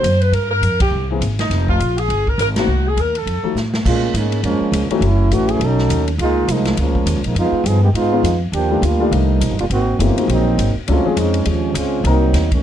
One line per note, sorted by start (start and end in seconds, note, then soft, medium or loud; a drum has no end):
0.00 0.31 F#2 medium
0.00 0.22 C5 medium
0.04 hi-hat pedal medium
0.04 ride medium
0.21 0.33 B4 medium
0.21 ride soft
0.32 0.61 G2 medium
0.32 0.50 A#4 medium
0.32 ride medium
0.51 0.78 A#4 loud
0.61 0.91 F2 medium
0.61 hi-hat pedal medium
0.61 ride medium
0.80 1.08 G4 medium
0.80 kick medium
0.80 ride medium
0.91 1.20 C2 medium
1.11 1.21 E3 medium
1.11 1.21 A#3 medium
1.11 1.21 C4 medium
1.11 1.21 G#4 medium
1.21 1.49 G#1 medium
1.21 hi-hat pedal medium
1.21 ride medium
1.39 1.66 D#4 medium
1.39 snare medium
1.39 ride soft
1.50 1.79 F1 medium
1.50 snare soft
1.50 ride medium
1.68 1.96 F4 medium
1.68 kick medium
1.79 2.08 A#1 medium
1.79 hi-hat pedal medium
1.79 ride medium
1.98 2.27 G#4 medium
1.98 ride soft
2.08 2.37 G1 medium
2.08 ride medium
2.27 2.39 A#4 medium
2.27 kick soft
2.38 2.66 G#1 medium
2.38 2.48 A#4 loud
2.38 hi-hat pedal medium
2.38 ride medium
2.56 2.67 D#3 medium
2.56 2.67 A#3 medium
2.56 2.67 C4 medium
2.56 2.67 F#4 medium
2.56 2.85 F#4 medium
2.56 snare medium
2.56 ride medium
2.67 2.96 C2 medium
2.88 2.99 G#4 medium
2.96 3.25 D#2 medium
2.96 hi-hat pedal soft
2.96 ride medium
3.00 3.16 A#4 medium
3.15 3.58 A4 medium
3.15 ride soft
3.26 3.42 F2 medium
3.26 ride medium
3.43 3.55 F3 medium
3.43 3.55 A3 medium
3.43 3.55 D#4 medium
3.43 3.55 F#4 medium
3.43 muted upright bass stroke soft
3.55 3.84 A2 medium
3.55 snare soft
3.55 hi-hat pedal soft
3.74 snare medium
3.85 4.13 A#2 medium
3.85 4.13 G#3 medium
3.85 4.13 A#3 medium
3.85 4.13 C#4 medium
3.85 4.13 F4 medium
3.85 kick medium
3.85 crash medium
4.13 4.42 G#2 loud
4.13 4.42 G#3 medium
4.13 4.43 A#3 medium
4.13 4.42 C#4 medium
4.13 4.44 D#4 medium
4.13 hi-hat pedal soft
4.13 ride medium
4.32 ride soft
4.43 4.60 F2 medium
4.43 4.87 F3 medium
4.43 4.87 G#3 medium
4.43 4.87 A#3 medium
4.43 4.87 C#4 loud
4.43 ride medium
4.60 muted upright bass stroke soft
4.72 4.89 C#2 medium
4.72 hi-hat pedal medium
4.72 ride medium
4.89 5.01 E3 medium
4.89 5.02 F3 medium
4.89 5.02 F#3 medium
4.89 5.02 G#3 medium
4.89 5.01 A3 medium
4.89 5.02 C4 medium
4.89 5.02 C#4 medium
4.89 5.02 D#4 medium
4.89 5.02 F#4 medium
4.89 muted upright bass stroke soft
4.89 ride soft
5.01 5.30 F#1 medium
5.01 5.32 F#3 medium
5.01 5.32 A3 medium
5.01 5.32 C#4 medium
5.01 5.32 E4 loud
5.01 ride medium
5.31 5.59 A1 medium
5.31 5.61 E3 medium
5.31 5.50 E3 medium
5.31 5.61 F#3 soft
5.31 5.61 A3 soft
5.31 5.50 A3 medium
5.31 5.61 C#4 medium
5.31 5.50 C#4 medium
5.31 5.61 F#4 medium
5.31 5.50 F#4 medium
5.31 hi-hat pedal medium
5.31 ride medium
5.49 5.62 E3 medium
5.49 5.62 A3 medium
5.49 5.62 C#4 medium
5.49 5.62 G#4 loud
5.49 ride soft
5.60 5.89 B1 medium
5.60 6.09 F#3 medium
5.60 6.09 C#4 medium
5.60 6.09 D#4 medium
5.60 6.09 A4 loud
5.60 ride medium
5.78 snare soft
5.89 6.18 D#2 medium
5.89 hi-hat pedal medium
5.89 ride medium
6.08 ride medium
6.18 6.47 C#2 medium
6.18 6.48 G#3 medium
6.18 6.47 A#3 medium
6.18 6.48 D#4 medium
6.18 6.47 F4 loud
6.18 ride medium
6.48 6.76 C2 medium
6.48 6.79 F3 medium
6.48 6.79 G#3 medium
6.48 6.79 A#3 medium
6.48 6.79 D#4 medium
6.48 hi-hat pedal medium
6.48 ride medium
6.65 snare medium
6.65 ride medium
6.77 7.05 C#2 medium
6.77 7.22 F3 medium
6.77 7.22 G#3 medium
6.77 7.22 A#3 medium
6.77 7.22 C#4 medium
6.77 ride medium
6.95 kick medium
7.06 7.16 D#2 medium
7.06 hi-hat pedal medium
7.06 ride medium
7.16 7.24 C#2 medium
7.24 7.34 A#1 medium
7.24 7.37 F3 medium
7.24 7.37 G#3 medium
7.24 7.37 A#3 medium
7.24 7.37 D#4 medium
7.24 ride medium
7.35 7.51 F2 medium
7.35 7.65 G#3 medium
7.35 7.65 B3 medium
7.35 7.65 D#4 medium
7.35 7.65 F4 loud
7.35 ride medium
7.52 muted upright bass stroke soft
7.64 7.93 G2 medium
7.64 7.83 F3 medium
7.64 7.82 B3 medium
7.64 7.83 D#4 medium
7.64 7.83 G#4 medium
7.64 hi-hat pedal medium
7.64 ride medium
7.83 7.89 D#3 medium
7.83 7.88 G#3 medium
7.83 7.89 B3 medium
7.83 7.88 G4 medium
7.94 8.22 G#2 medium
7.94 8.38 G#3 medium
7.94 8.38 B3 medium
7.94 8.39 D#4 medium
7.94 8.39 F4 loud
7.94 ride medium
8.12 8.23 D#3 medium
8.12 8.23 G#3 medium
8.12 8.23 B3 medium
8.12 8.23 C#4 medium
8.12 8.23 F4 medium
8.23 8.51 F2 medium
8.23 hi-hat pedal medium
8.23 ride medium
8.52 8.81 D#2 medium
8.52 8.81 F3 medium
8.52 8.81 A#3 medium
8.52 8.81 D4 medium
8.52 8.81 G4 medium
8.52 ride medium
8.71 8.81 D#3 medium
8.71 8.82 G3 medium
8.71 8.82 A3 medium
8.71 8.82 D4 medium
8.71 8.82 F4 medium
8.82 9.11 D2 medium
8.82 9.12 G3 medium
8.82 9.12 A#3 medium
8.82 9.13 D4 medium
8.82 9.13 F4 medium
8.82 hi-hat pedal medium
8.82 ride medium
9.00 9.39 D#3 medium
9.00 9.39 G3 medium
9.00 9.39 A3 medium
9.00 9.39 D4 medium
9.00 9.39 F4 medium
9.11 9.40 C2 medium
9.11 9.59 F3 medium
9.11 9.60 G3 medium
9.11 9.59 A#3 medium
9.11 9.59 D#4 medium
9.11 ride medium
9.41 9.50 A#1 medium
9.41 hi-hat pedal medium
9.41 ride medium
9.50 9.59 G1 medium
9.59 9.69 D#1 medium
9.59 9.66 G3 medium
9.59 9.66 A#3 medium
9.59 9.65 D4 medium
9.59 9.66 F4 medium
9.59 ride soft
9.70 9.99 G#1 medium
9.70 9.98 D#3 medium
9.70 9.98 A#3 medium
9.70 9.98 C4 medium
9.70 9.98 F#4 loud
9.70 ride medium
9.99 10.16 F#1 medium
9.99 10.15 E3 medium
9.99 10.16 A3 medium
9.99 10.29 A#3 medium
9.99 10.16 B3 soft
9.99 10.29 C4 medium
9.99 10.16 C#4 medium
9.99 10.29 D#4 medium
9.99 10.30 F4 medium
9.99 10.16 G4 medium
9.99 hi-hat pedal medium
9.99 ride medium
10.18 10.43 D#3 medium
10.18 10.43 G#3 soft
10.18 10.44 A#3 soft
10.18 10.44 C4 medium
10.18 10.44 F#4 medium
10.18 ride medium
10.28 10.57 A#1 medium
10.28 10.73 F#3 medium
10.28 10.73 A#3 medium
10.28 10.73 C4 medium
10.28 10.73 D#4 medium
10.28 ride medium
10.58 10.74 G#1 medium
10.58 hi-hat pedal medium
10.58 ride medium
10.76 muted upright bass stroke soft
10.88 11.04 C#2 medium
10.88 11.03 F#3 medium
10.88 11.15 G#3 medium
10.88 11.04 A3 medium
10.88 11.16 C4 medium
10.88 11.04 C#4 medium
10.88 11.16 C#4 medium
10.88 11.04 D4 medium
10.88 11.15 F4 medium
10.88 11.04 A4 medium
10.88 ride medium
11.05 11.68 F3 medium
11.05 11.68 G#3 medium
11.05 11.69 C4 medium
11.05 11.69 C#4 medium
11.05 11.69 G#4 medium
11.16 11.45 F2 loud
11.16 11.45 G#3 medium
11.16 11.47 C4 medium
11.16 11.45 C#4 medium
11.16 11.46 D#4 medium
11.16 hi-hat pedal medium
11.16 ride medium
11.34 ride medium
11.45 11.74 D#2 medium
11.45 11.76 C3 medium
11.45 11.76 F3 medium
11.45 11.75 G#3 medium
11.45 11.75 C#4 medium
11.45 ride medium
11.74 12.03 C#2 medium
11.74 12.05 G#3 medium
11.74 12.04 C4 medium
11.74 12.05 C#4 medium
11.74 12.05 F4 medium
11.74 hi-hat pedal medium
11.74 ride medium
12.04 12.33 C2 medium
12.04 12.21 F#3 medium
12.04 12.49 F#3 medium
12.04 12.21 A#3 medium
12.04 12.49 A#3 medium
12.04 12.48 C4 medium
12.04 12.21 C4 medium
12.04 12.49 D#4 medium
12.04 12.21 D#4 medium
12.04 12.21 A#4 medium
12.04 ride medium
12.33 12.61 D#2 medium
12.33 snare soft
12.33 hi-hat pedal medium
12.33 ride medium
12.52 12.63 D#3 medium
12.52 12.63 G#3 medium
12.52 12.63 A3 medium
12.52 12.63 C#4 medium
12.52 kick medium
12.52 ride medium